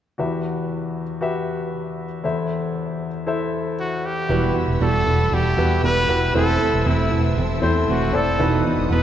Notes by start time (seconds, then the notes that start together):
0.18 E2 E3 F#4 G4 B4 E5
1.21 F#4 G4 B4 E5
2.24 E2 E3 E4 A4 C5 E5
3.27 E4 A4 C5 E5
3.80 F#4
4.05 G4
4.29 E1 E2 B2 E3 G3 B3 E4 F#4 G4 B4 E5 F#5 E6
4.54 E3 G3 B3 F#4
4.68 E1
4.80 E1 E2 B2 E3 G3 B3 F#4 A4
5.06 E1 E3 G3 B3 F#4
5.31 E1 E3 G3 B3 F#4 G4
5.57 E2 E3 G3 B3 E4 F#4 G4 B4
5.83 E1 E2 B2 E3 G3 B3 F#4 B4
6.08 E1 E3 G3 B3 E4 F#4 G4 B4
6.34 E1 E3 A3 C4 E4 A4 C5 E5 A5
6.60 A3 C4 E4
6.73 E1
6.86 E1 E3 A3 C4 E4
7.11 E1 A3 C4 E4
7.37 E1 E3 A3 C4 E4
7.62 E2 A3 C4 E4 A4 C5
7.88 E1 E3 A3 C4 E4 F#4
8.13 E1 A3 C4 E4 A4 D5
8.39 E1 E2 B2 E3 B3 D#4 F#4 B4 D#5 F#5 D#6
8.65 E3 B3 D#4 F#4
8.78 E1
8.91 E1 E2 B2 E3 B3 D#4 F#4 B4